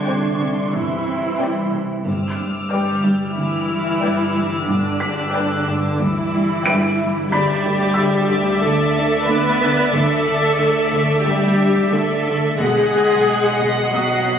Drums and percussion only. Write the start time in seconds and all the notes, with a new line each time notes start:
2.07 taiko
7.32 taiko
8.29 taiko
9.93 taiko
11.26 taiko
11.76 taiko
12.59 taiko
13.94 taiko